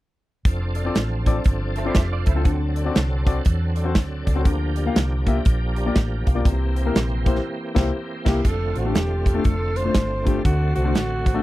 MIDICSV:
0, 0, Header, 1, 7, 480
1, 0, Start_track
1, 0, Key_signature, -1, "major"
1, 0, Tempo, 499584
1, 441, Time_signature, 4, 2, 24, 8
1, 10979, End_track
2, 0, Start_track
2, 0, Title_t, "Clean electric guitar"
2, 0, Program_c, 0, 27
2, 1712, Note_on_c, 0, 69, 68
2, 1717, Note_on_c, 0, 60, 58
2, 1790, Note_off_c, 0, 69, 0
2, 1793, Note_on_c, 0, 72, 72
2, 1794, Note_off_c, 0, 60, 0
2, 1802, Note_on_c, 0, 64, 62
2, 1877, Note_off_c, 0, 72, 0
2, 1881, Note_off_c, 0, 64, 0
2, 1888, Note_on_c, 0, 76, 73
2, 1897, Note_on_c, 0, 67, 63
2, 2026, Note_off_c, 0, 76, 0
2, 2031, Note_off_c, 0, 67, 0
2, 2038, Note_on_c, 0, 65, 65
2, 2042, Note_on_c, 0, 74, 75
2, 2176, Note_off_c, 0, 74, 0
2, 2177, Note_off_c, 0, 65, 0
2, 2186, Note_on_c, 0, 72, 68
2, 2191, Note_on_c, 0, 64, 61
2, 2268, Note_off_c, 0, 72, 0
2, 2269, Note_off_c, 0, 64, 0
2, 2274, Note_on_c, 0, 69, 65
2, 2282, Note_on_c, 0, 60, 56
2, 2499, Note_off_c, 0, 69, 0
2, 2504, Note_off_c, 0, 60, 0
2, 10979, End_track
3, 0, Start_track
3, 0, Title_t, "Alto saxophone"
3, 0, Program_c, 1, 65
3, 7957, Note_on_c, 1, 67, 76
3, 8145, Note_on_c, 1, 69, 89
3, 8160, Note_off_c, 1, 67, 0
3, 8434, Note_off_c, 1, 69, 0
3, 8442, Note_on_c, 1, 67, 88
3, 9081, Note_on_c, 1, 69, 92
3, 9096, Note_off_c, 1, 67, 0
3, 9384, Note_on_c, 1, 72, 103
3, 9399, Note_off_c, 1, 69, 0
3, 9866, Note_on_c, 1, 67, 86
3, 9881, Note_off_c, 1, 72, 0
3, 10032, Note_off_c, 1, 67, 0
3, 10038, Note_on_c, 1, 66, 88
3, 10318, Note_off_c, 1, 66, 0
3, 10334, Note_on_c, 1, 66, 96
3, 10979, Note_off_c, 1, 66, 0
3, 10979, End_track
4, 0, Start_track
4, 0, Title_t, "Grand piano"
4, 0, Program_c, 2, 0
4, 724, Note_on_c, 2, 69, 44
4, 731, Note_on_c, 2, 74, 50
4, 778, Note_off_c, 2, 69, 0
4, 782, Note_off_c, 2, 74, 0
4, 815, Note_on_c, 2, 60, 65
4, 826, Note_on_c, 2, 65, 63
4, 829, Note_on_c, 2, 69, 63
4, 829, Note_on_c, 2, 74, 79
4, 916, Note_off_c, 2, 60, 0
4, 922, Note_off_c, 2, 65, 0
4, 923, Note_off_c, 2, 69, 0
4, 923, Note_off_c, 2, 74, 0
4, 1212, Note_on_c, 2, 60, 71
4, 1216, Note_on_c, 2, 65, 66
4, 1218, Note_on_c, 2, 69, 67
4, 1222, Note_on_c, 2, 74, 83
4, 1308, Note_off_c, 2, 60, 0
4, 1310, Note_off_c, 2, 65, 0
4, 1311, Note_off_c, 2, 69, 0
4, 1313, Note_off_c, 2, 74, 0
4, 1687, Note_on_c, 2, 69, 49
4, 1698, Note_on_c, 2, 76, 53
4, 1739, Note_off_c, 2, 69, 0
4, 1744, Note_off_c, 2, 76, 0
4, 1779, Note_on_c, 2, 65, 62
4, 1780, Note_on_c, 2, 60, 74
4, 1784, Note_on_c, 2, 69, 61
4, 1790, Note_on_c, 2, 74, 80
4, 1877, Note_off_c, 2, 65, 0
4, 1878, Note_off_c, 2, 60, 0
4, 1880, Note_off_c, 2, 69, 0
4, 1883, Note_off_c, 2, 74, 0
4, 2168, Note_on_c, 2, 69, 49
4, 2180, Note_on_c, 2, 76, 52
4, 2220, Note_off_c, 2, 69, 0
4, 2225, Note_off_c, 2, 76, 0
4, 2258, Note_on_c, 2, 60, 67
4, 2263, Note_on_c, 2, 65, 62
4, 2268, Note_on_c, 2, 69, 63
4, 2271, Note_on_c, 2, 72, 73
4, 2346, Note_on_c, 2, 50, 71
4, 2353, Note_off_c, 2, 60, 0
4, 2356, Note_off_c, 2, 65, 0
4, 2358, Note_off_c, 2, 69, 0
4, 2359, Note_off_c, 2, 72, 0
4, 2647, Note_on_c, 2, 69, 42
4, 2660, Note_on_c, 2, 74, 52
4, 2699, Note_off_c, 2, 69, 0
4, 2705, Note_off_c, 2, 74, 0
4, 2742, Note_on_c, 2, 60, 69
4, 2743, Note_on_c, 2, 66, 65
4, 2748, Note_on_c, 2, 69, 63
4, 2748, Note_on_c, 2, 74, 78
4, 2839, Note_off_c, 2, 60, 0
4, 2839, Note_off_c, 2, 66, 0
4, 2842, Note_off_c, 2, 69, 0
4, 2842, Note_off_c, 2, 74, 0
4, 3093, Note_off_c, 2, 50, 0
4, 3131, Note_on_c, 2, 60, 74
4, 3135, Note_on_c, 2, 66, 69
4, 3140, Note_on_c, 2, 69, 65
4, 3143, Note_on_c, 2, 74, 88
4, 3227, Note_off_c, 2, 60, 0
4, 3229, Note_off_c, 2, 66, 0
4, 3231, Note_off_c, 2, 69, 0
4, 3233, Note_off_c, 2, 74, 0
4, 3608, Note_on_c, 2, 69, 46
4, 3622, Note_on_c, 2, 74, 49
4, 3659, Note_off_c, 2, 69, 0
4, 3666, Note_off_c, 2, 74, 0
4, 3691, Note_on_c, 2, 60, 67
4, 3697, Note_on_c, 2, 66, 67
4, 3699, Note_on_c, 2, 69, 66
4, 3704, Note_on_c, 2, 72, 77
4, 3793, Note_off_c, 2, 60, 0
4, 3796, Note_off_c, 2, 66, 0
4, 3797, Note_off_c, 2, 69, 0
4, 3800, Note_off_c, 2, 72, 0
4, 4085, Note_on_c, 2, 69, 45
4, 4095, Note_on_c, 2, 74, 53
4, 4138, Note_off_c, 2, 69, 0
4, 4143, Note_off_c, 2, 74, 0
4, 4179, Note_on_c, 2, 60, 69
4, 4182, Note_on_c, 2, 66, 64
4, 4190, Note_on_c, 2, 69, 61
4, 4190, Note_on_c, 2, 72, 77
4, 4274, Note_off_c, 2, 60, 0
4, 4274, Note_on_c, 2, 50, 69
4, 4275, Note_off_c, 2, 66, 0
4, 4279, Note_off_c, 2, 69, 0
4, 4279, Note_off_c, 2, 72, 0
4, 4572, Note_on_c, 2, 67, 46
4, 4586, Note_on_c, 2, 74, 52
4, 4622, Note_off_c, 2, 67, 0
4, 4629, Note_off_c, 2, 74, 0
4, 4669, Note_on_c, 2, 58, 69
4, 4670, Note_on_c, 2, 65, 65
4, 4674, Note_on_c, 2, 67, 66
4, 4680, Note_on_c, 2, 77, 76
4, 4763, Note_off_c, 2, 58, 0
4, 4763, Note_off_c, 2, 65, 0
4, 4765, Note_off_c, 2, 67, 0
4, 4768, Note_off_c, 2, 77, 0
4, 5019, Note_off_c, 2, 50, 0
4, 5059, Note_on_c, 2, 58, 75
4, 5064, Note_on_c, 2, 65, 72
4, 5066, Note_on_c, 2, 67, 70
4, 5073, Note_on_c, 2, 76, 85
4, 5152, Note_off_c, 2, 58, 0
4, 5154, Note_off_c, 2, 65, 0
4, 5155, Note_off_c, 2, 67, 0
4, 5158, Note_off_c, 2, 76, 0
4, 5539, Note_on_c, 2, 67, 48
4, 5552, Note_on_c, 2, 74, 50
4, 5585, Note_off_c, 2, 67, 0
4, 5592, Note_off_c, 2, 74, 0
4, 5628, Note_on_c, 2, 58, 67
4, 5633, Note_on_c, 2, 65, 64
4, 5636, Note_on_c, 2, 67, 67
4, 5641, Note_on_c, 2, 74, 77
4, 5723, Note_off_c, 2, 58, 0
4, 5725, Note_off_c, 2, 65, 0
4, 5727, Note_off_c, 2, 67, 0
4, 5730, Note_off_c, 2, 74, 0
4, 6016, Note_on_c, 2, 67, 46
4, 6025, Note_on_c, 2, 77, 52
4, 6064, Note_off_c, 2, 67, 0
4, 6069, Note_off_c, 2, 77, 0
4, 6098, Note_on_c, 2, 65, 62
4, 6099, Note_on_c, 2, 58, 68
4, 6106, Note_on_c, 2, 67, 62
4, 6108, Note_on_c, 2, 74, 79
4, 6193, Note_on_c, 2, 48, 68
4, 6194, Note_off_c, 2, 65, 0
4, 6195, Note_off_c, 2, 58, 0
4, 6198, Note_off_c, 2, 67, 0
4, 6199, Note_off_c, 2, 74, 0
4, 6492, Note_on_c, 2, 67, 47
4, 6502, Note_on_c, 2, 72, 48
4, 6542, Note_off_c, 2, 67, 0
4, 6547, Note_off_c, 2, 72, 0
4, 6582, Note_on_c, 2, 58, 65
4, 6589, Note_on_c, 2, 64, 66
4, 6591, Note_on_c, 2, 67, 63
4, 6598, Note_on_c, 2, 70, 77
4, 6680, Note_off_c, 2, 58, 0
4, 6684, Note_off_c, 2, 64, 0
4, 6685, Note_off_c, 2, 67, 0
4, 6688, Note_off_c, 2, 70, 0
4, 6939, Note_off_c, 2, 48, 0
4, 6972, Note_on_c, 2, 58, 70
4, 6975, Note_on_c, 2, 64, 66
4, 6980, Note_on_c, 2, 67, 64
4, 6983, Note_on_c, 2, 72, 83
4, 7069, Note_off_c, 2, 58, 0
4, 7071, Note_off_c, 2, 64, 0
4, 7073, Note_off_c, 2, 67, 0
4, 7075, Note_off_c, 2, 72, 0
4, 7443, Note_on_c, 2, 58, 86
4, 7444, Note_on_c, 2, 64, 88
4, 7452, Note_on_c, 2, 67, 90
4, 7453, Note_on_c, 2, 72, 86
4, 7573, Note_off_c, 2, 58, 0
4, 7574, Note_off_c, 2, 64, 0
4, 7578, Note_off_c, 2, 67, 0
4, 7579, Note_off_c, 2, 72, 0
4, 7926, Note_on_c, 2, 58, 88
4, 7932, Note_on_c, 2, 64, 92
4, 7935, Note_on_c, 2, 67, 84
4, 8055, Note_off_c, 2, 58, 0
4, 8059, Note_off_c, 2, 64, 0
4, 8060, Note_off_c, 2, 67, 0
4, 8409, Note_on_c, 2, 65, 39
4, 8422, Note_on_c, 2, 72, 42
4, 8462, Note_off_c, 2, 65, 0
4, 8468, Note_off_c, 2, 72, 0
4, 8501, Note_on_c, 2, 57, 57
4, 8503, Note_on_c, 2, 62, 55
4, 8509, Note_on_c, 2, 65, 57
4, 8512, Note_on_c, 2, 69, 65
4, 8600, Note_off_c, 2, 57, 0
4, 8601, Note_off_c, 2, 62, 0
4, 8604, Note_off_c, 2, 65, 0
4, 8606, Note_off_c, 2, 69, 0
4, 8889, Note_on_c, 2, 65, 41
4, 8896, Note_on_c, 2, 69, 42
4, 8942, Note_off_c, 2, 65, 0
4, 8945, Note_off_c, 2, 69, 0
4, 8972, Note_on_c, 2, 57, 65
4, 8975, Note_on_c, 2, 62, 57
4, 8979, Note_on_c, 2, 65, 57
4, 8981, Note_on_c, 2, 69, 70
4, 9076, Note_off_c, 2, 57, 0
4, 9077, Note_off_c, 2, 62, 0
4, 9079, Note_off_c, 2, 65, 0
4, 9080, Note_off_c, 2, 69, 0
4, 9366, Note_on_c, 2, 65, 38
4, 9379, Note_on_c, 2, 72, 44
4, 9420, Note_off_c, 2, 65, 0
4, 9427, Note_off_c, 2, 72, 0
4, 9456, Note_on_c, 2, 57, 64
4, 9462, Note_on_c, 2, 62, 55
4, 9466, Note_on_c, 2, 65, 57
4, 9470, Note_on_c, 2, 72, 68
4, 9557, Note_off_c, 2, 57, 0
4, 9561, Note_off_c, 2, 62, 0
4, 9563, Note_off_c, 2, 65, 0
4, 9565, Note_off_c, 2, 72, 0
4, 9847, Note_on_c, 2, 62, 59
4, 9849, Note_on_c, 2, 57, 66
4, 9852, Note_on_c, 2, 65, 60
4, 9861, Note_on_c, 2, 72, 75
4, 9946, Note_off_c, 2, 62, 0
4, 9947, Note_off_c, 2, 57, 0
4, 9949, Note_off_c, 2, 65, 0
4, 9953, Note_off_c, 2, 72, 0
4, 10033, Note_on_c, 2, 50, 56
4, 10332, Note_on_c, 2, 66, 41
4, 10343, Note_on_c, 2, 72, 45
4, 10382, Note_off_c, 2, 66, 0
4, 10388, Note_off_c, 2, 72, 0
4, 10415, Note_on_c, 2, 57, 63
4, 10419, Note_on_c, 2, 62, 59
4, 10424, Note_on_c, 2, 66, 57
4, 10427, Note_on_c, 2, 72, 66
4, 10516, Note_off_c, 2, 57, 0
4, 10518, Note_off_c, 2, 62, 0
4, 10521, Note_off_c, 2, 66, 0
4, 10522, Note_off_c, 2, 72, 0
4, 10777, Note_off_c, 2, 50, 0
4, 10804, Note_on_c, 2, 66, 42
4, 10814, Note_on_c, 2, 72, 43
4, 10858, Note_off_c, 2, 66, 0
4, 10863, Note_off_c, 2, 72, 0
4, 10899, Note_on_c, 2, 57, 78
4, 10899, Note_on_c, 2, 62, 73
4, 10903, Note_on_c, 2, 66, 72
4, 10910, Note_on_c, 2, 69, 84
4, 10979, Note_off_c, 2, 57, 0
4, 10979, Note_off_c, 2, 62, 0
4, 10979, Note_off_c, 2, 66, 0
4, 10979, Note_off_c, 2, 69, 0
4, 10979, End_track
5, 0, Start_track
5, 0, Title_t, "Tonewheel organ"
5, 0, Program_c, 3, 16
5, 440, Note_on_c, 3, 69, 69
5, 441, Note_on_c, 3, 53, 60
5, 441, Note_on_c, 3, 62, 57
5, 443, Note_on_c, 3, 60, 57
5, 2339, Note_off_c, 3, 53, 0
5, 2357, Note_on_c, 3, 54, 65
5, 4240, Note_off_c, 3, 69, 0
5, 4241, Note_off_c, 3, 60, 0
5, 4259, Note_off_c, 3, 54, 0
5, 4269, Note_on_c, 3, 58, 58
5, 4269, Note_on_c, 3, 67, 70
5, 4274, Note_on_c, 3, 53, 61
5, 6162, Note_off_c, 3, 62, 0
5, 6179, Note_off_c, 3, 53, 0
5, 6196, Note_on_c, 3, 60, 57
5, 6202, Note_on_c, 3, 52, 64
5, 8078, Note_off_c, 3, 58, 0
5, 8078, Note_off_c, 3, 67, 0
5, 8100, Note_off_c, 3, 60, 0
5, 8103, Note_off_c, 3, 52, 0
5, 8106, Note_on_c, 3, 50, 58
5, 8112, Note_on_c, 3, 60, 55
5, 8112, Note_on_c, 3, 65, 68
5, 8115, Note_on_c, 3, 57, 56
5, 10017, Note_off_c, 3, 65, 0
5, 10051, Note_on_c, 3, 66, 69
5, 10979, Note_off_c, 3, 50, 0
5, 10979, Note_off_c, 3, 57, 0
5, 10979, Note_off_c, 3, 60, 0
5, 10979, Note_off_c, 3, 66, 0
5, 10979, End_track
6, 0, Start_track
6, 0, Title_t, "Fingered electric bass"
6, 0, Program_c, 4, 33
6, 437, Note_on_c, 4, 29, 86
6, 846, Note_off_c, 4, 29, 0
6, 921, Note_on_c, 4, 33, 85
6, 1328, Note_off_c, 4, 33, 0
6, 1405, Note_on_c, 4, 31, 77
6, 1810, Note_off_c, 4, 31, 0
6, 1883, Note_on_c, 4, 29, 87
6, 2136, Note_off_c, 4, 29, 0
6, 2183, Note_on_c, 4, 37, 89
6, 2334, Note_off_c, 4, 37, 0
6, 2360, Note_on_c, 4, 38, 94
6, 2767, Note_off_c, 4, 38, 0
6, 2847, Note_on_c, 4, 36, 81
6, 3251, Note_off_c, 4, 36, 0
6, 3328, Note_on_c, 4, 40, 80
6, 3811, Note_off_c, 4, 40, 0
6, 3811, Note_on_c, 4, 38, 91
6, 4061, Note_off_c, 4, 38, 0
6, 4102, Note_on_c, 4, 37, 93
6, 4253, Note_off_c, 4, 37, 0
6, 4283, Note_on_c, 4, 38, 112
6, 4690, Note_off_c, 4, 38, 0
6, 4764, Note_on_c, 4, 36, 89
6, 5170, Note_off_c, 4, 36, 0
6, 5249, Note_on_c, 4, 34, 83
6, 5653, Note_off_c, 4, 34, 0
6, 5729, Note_on_c, 4, 33, 95
6, 5981, Note_off_c, 4, 33, 0
6, 6026, Note_on_c, 4, 35, 89
6, 6177, Note_off_c, 4, 35, 0
6, 6203, Note_on_c, 4, 36, 95
6, 6610, Note_off_c, 4, 36, 0
6, 6683, Note_on_c, 4, 34, 87
6, 7090, Note_off_c, 4, 34, 0
6, 7461, Note_on_c, 4, 36, 90
6, 7584, Note_off_c, 4, 36, 0
6, 7941, Note_on_c, 4, 36, 93
6, 8064, Note_off_c, 4, 36, 0
6, 8118, Note_on_c, 4, 29, 101
6, 8375, Note_off_c, 4, 29, 0
6, 8423, Note_on_c, 4, 33, 78
6, 8575, Note_off_c, 4, 33, 0
6, 8600, Note_on_c, 4, 28, 90
6, 9009, Note_off_c, 4, 28, 0
6, 9082, Note_on_c, 4, 29, 78
6, 9489, Note_off_c, 4, 29, 0
6, 9570, Note_on_c, 4, 31, 94
6, 9974, Note_off_c, 4, 31, 0
6, 10039, Note_on_c, 4, 38, 90
6, 10295, Note_off_c, 4, 38, 0
6, 10343, Note_on_c, 4, 36, 80
6, 10516, Note_off_c, 4, 36, 0
6, 10516, Note_on_c, 4, 33, 87
6, 10925, Note_off_c, 4, 33, 0
6, 10979, End_track
7, 0, Start_track
7, 0, Title_t, "Drums"
7, 434, Note_on_c, 9, 36, 105
7, 434, Note_on_c, 9, 42, 88
7, 530, Note_off_c, 9, 36, 0
7, 530, Note_off_c, 9, 42, 0
7, 721, Note_on_c, 9, 42, 68
7, 817, Note_off_c, 9, 42, 0
7, 916, Note_on_c, 9, 42, 80
7, 920, Note_on_c, 9, 38, 108
7, 1012, Note_off_c, 9, 42, 0
7, 1016, Note_off_c, 9, 38, 0
7, 1213, Note_on_c, 9, 42, 73
7, 1214, Note_on_c, 9, 36, 79
7, 1309, Note_off_c, 9, 42, 0
7, 1310, Note_off_c, 9, 36, 0
7, 1388, Note_on_c, 9, 42, 86
7, 1400, Note_on_c, 9, 36, 105
7, 1484, Note_off_c, 9, 42, 0
7, 1496, Note_off_c, 9, 36, 0
7, 1688, Note_on_c, 9, 42, 76
7, 1784, Note_off_c, 9, 42, 0
7, 1871, Note_on_c, 9, 38, 102
7, 1876, Note_on_c, 9, 42, 86
7, 1882, Note_on_c, 9, 36, 92
7, 1967, Note_off_c, 9, 38, 0
7, 1972, Note_off_c, 9, 42, 0
7, 1978, Note_off_c, 9, 36, 0
7, 2172, Note_on_c, 9, 42, 66
7, 2179, Note_on_c, 9, 36, 86
7, 2268, Note_off_c, 9, 42, 0
7, 2276, Note_off_c, 9, 36, 0
7, 2354, Note_on_c, 9, 42, 83
7, 2357, Note_on_c, 9, 36, 107
7, 2450, Note_off_c, 9, 42, 0
7, 2453, Note_off_c, 9, 36, 0
7, 2652, Note_on_c, 9, 42, 64
7, 2748, Note_off_c, 9, 42, 0
7, 2839, Note_on_c, 9, 42, 75
7, 2843, Note_on_c, 9, 38, 105
7, 2935, Note_off_c, 9, 42, 0
7, 2939, Note_off_c, 9, 38, 0
7, 3138, Note_on_c, 9, 36, 84
7, 3140, Note_on_c, 9, 42, 77
7, 3234, Note_off_c, 9, 36, 0
7, 3236, Note_off_c, 9, 42, 0
7, 3313, Note_on_c, 9, 42, 88
7, 3323, Note_on_c, 9, 36, 98
7, 3409, Note_off_c, 9, 42, 0
7, 3419, Note_off_c, 9, 36, 0
7, 3611, Note_on_c, 9, 42, 71
7, 3707, Note_off_c, 9, 42, 0
7, 3796, Note_on_c, 9, 38, 101
7, 3801, Note_on_c, 9, 42, 86
7, 3805, Note_on_c, 9, 36, 85
7, 3892, Note_off_c, 9, 38, 0
7, 3897, Note_off_c, 9, 42, 0
7, 3901, Note_off_c, 9, 36, 0
7, 4102, Note_on_c, 9, 42, 66
7, 4103, Note_on_c, 9, 36, 81
7, 4198, Note_off_c, 9, 42, 0
7, 4199, Note_off_c, 9, 36, 0
7, 4279, Note_on_c, 9, 36, 102
7, 4280, Note_on_c, 9, 42, 86
7, 4375, Note_off_c, 9, 36, 0
7, 4376, Note_off_c, 9, 42, 0
7, 4572, Note_on_c, 9, 42, 66
7, 4668, Note_off_c, 9, 42, 0
7, 4764, Note_on_c, 9, 42, 79
7, 4768, Note_on_c, 9, 38, 109
7, 4860, Note_off_c, 9, 42, 0
7, 4864, Note_off_c, 9, 38, 0
7, 5060, Note_on_c, 9, 36, 84
7, 5061, Note_on_c, 9, 42, 72
7, 5156, Note_off_c, 9, 36, 0
7, 5157, Note_off_c, 9, 42, 0
7, 5239, Note_on_c, 9, 42, 88
7, 5245, Note_on_c, 9, 36, 99
7, 5335, Note_off_c, 9, 42, 0
7, 5341, Note_off_c, 9, 36, 0
7, 5538, Note_on_c, 9, 42, 73
7, 5634, Note_off_c, 9, 42, 0
7, 5723, Note_on_c, 9, 38, 108
7, 5727, Note_on_c, 9, 36, 92
7, 5728, Note_on_c, 9, 42, 83
7, 5819, Note_off_c, 9, 38, 0
7, 5823, Note_off_c, 9, 36, 0
7, 5824, Note_off_c, 9, 42, 0
7, 6022, Note_on_c, 9, 42, 64
7, 6024, Note_on_c, 9, 36, 85
7, 6118, Note_off_c, 9, 42, 0
7, 6120, Note_off_c, 9, 36, 0
7, 6201, Note_on_c, 9, 36, 102
7, 6207, Note_on_c, 9, 42, 84
7, 6297, Note_off_c, 9, 36, 0
7, 6303, Note_off_c, 9, 42, 0
7, 6499, Note_on_c, 9, 42, 68
7, 6595, Note_off_c, 9, 42, 0
7, 6683, Note_on_c, 9, 42, 79
7, 6687, Note_on_c, 9, 38, 104
7, 6779, Note_off_c, 9, 42, 0
7, 6783, Note_off_c, 9, 38, 0
7, 6978, Note_on_c, 9, 36, 86
7, 6981, Note_on_c, 9, 42, 75
7, 7068, Note_on_c, 9, 38, 31
7, 7074, Note_off_c, 9, 36, 0
7, 7077, Note_off_c, 9, 42, 0
7, 7164, Note_off_c, 9, 38, 0
7, 7458, Note_on_c, 9, 36, 93
7, 7461, Note_on_c, 9, 38, 93
7, 7461, Note_on_c, 9, 49, 74
7, 7554, Note_off_c, 9, 36, 0
7, 7557, Note_off_c, 9, 38, 0
7, 7557, Note_off_c, 9, 49, 0
7, 7938, Note_on_c, 9, 36, 102
7, 7940, Note_on_c, 9, 38, 96
7, 7940, Note_on_c, 9, 49, 75
7, 8034, Note_off_c, 9, 36, 0
7, 8036, Note_off_c, 9, 38, 0
7, 8036, Note_off_c, 9, 49, 0
7, 8117, Note_on_c, 9, 36, 99
7, 8117, Note_on_c, 9, 42, 82
7, 8213, Note_off_c, 9, 36, 0
7, 8213, Note_off_c, 9, 42, 0
7, 8412, Note_on_c, 9, 42, 67
7, 8508, Note_off_c, 9, 42, 0
7, 8601, Note_on_c, 9, 42, 76
7, 8604, Note_on_c, 9, 38, 102
7, 8697, Note_off_c, 9, 42, 0
7, 8700, Note_off_c, 9, 38, 0
7, 8897, Note_on_c, 9, 36, 81
7, 8904, Note_on_c, 9, 42, 73
7, 8993, Note_off_c, 9, 36, 0
7, 9000, Note_off_c, 9, 42, 0
7, 9075, Note_on_c, 9, 42, 84
7, 9081, Note_on_c, 9, 36, 96
7, 9171, Note_off_c, 9, 42, 0
7, 9177, Note_off_c, 9, 36, 0
7, 9379, Note_on_c, 9, 42, 76
7, 9475, Note_off_c, 9, 42, 0
7, 9556, Note_on_c, 9, 38, 109
7, 9561, Note_on_c, 9, 42, 90
7, 9564, Note_on_c, 9, 36, 86
7, 9652, Note_off_c, 9, 38, 0
7, 9657, Note_off_c, 9, 42, 0
7, 9661, Note_off_c, 9, 36, 0
7, 9864, Note_on_c, 9, 36, 83
7, 9865, Note_on_c, 9, 42, 60
7, 9960, Note_off_c, 9, 36, 0
7, 9961, Note_off_c, 9, 42, 0
7, 10041, Note_on_c, 9, 36, 102
7, 10045, Note_on_c, 9, 42, 82
7, 10137, Note_off_c, 9, 36, 0
7, 10141, Note_off_c, 9, 42, 0
7, 10335, Note_on_c, 9, 42, 68
7, 10431, Note_off_c, 9, 42, 0
7, 10522, Note_on_c, 9, 42, 77
7, 10526, Note_on_c, 9, 38, 103
7, 10619, Note_off_c, 9, 42, 0
7, 10622, Note_off_c, 9, 38, 0
7, 10820, Note_on_c, 9, 36, 85
7, 10824, Note_on_c, 9, 42, 77
7, 10916, Note_off_c, 9, 36, 0
7, 10920, Note_off_c, 9, 42, 0
7, 10979, End_track
0, 0, End_of_file